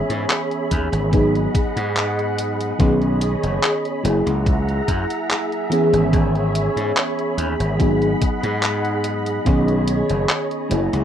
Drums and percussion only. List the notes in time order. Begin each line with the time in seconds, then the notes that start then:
0.10 closed hi-hat
0.30 clap, closed hi-hat
0.51 closed hi-hat
0.71 kick, closed hi-hat
0.93 closed hi-hat
1.13 kick, closed hi-hat
1.35 closed hi-hat
1.55 kick, closed hi-hat
1.77 closed hi-hat
1.97 clap, closed hi-hat
2.19 closed hi-hat
2.38 closed hi-hat
2.60 closed hi-hat
2.80 kick, closed hi-hat
3.02 closed hi-hat
3.21 closed hi-hat
3.43 closed hi-hat
3.63 clap, closed hi-hat
3.85 closed hi-hat
4.05 closed hi-hat
4.27 closed hi-hat
4.46 kick, closed hi-hat
4.69 closed hi-hat
4.88 kick, closed hi-hat
5.10 closed hi-hat
5.31 clap, closed hi-hat
5.52 closed hi-hat
5.72 closed hi-hat
5.94 closed hi-hat
6.13 kick, closed hi-hat
6.35 closed hi-hat
6.55 closed hi-hat
6.77 closed hi-hat
6.97 clap, closed hi-hat
7.19 closed hi-hat
7.38 closed hi-hat
7.60 closed hi-hat
7.80 kick, closed hi-hat
8.02 closed hi-hat
8.21 kick, closed hi-hat
8.43 closed hi-hat
8.63 clap, closed hi-hat
8.85 closed hi-hat
9.04 closed hi-hat
9.26 closed hi-hat
9.46 kick, closed hi-hat
9.68 closed hi-hat
9.87 closed hi-hat
10.09 closed hi-hat
10.29 clap, closed hi-hat
10.51 closed hi-hat
10.71 closed hi-hat
10.93 closed hi-hat